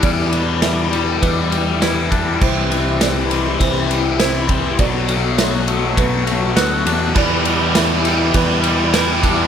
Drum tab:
CC |--------|x-------|--------|x-------|
RD |xxxxxxxx|-xxxxxxx|xxxxxxxx|-xxxxxxx|
SD |--o---o-|--o---o-|--o---o-|--o---o-|
BD |o---o--o|o---o--o|o---o---|o---o--o|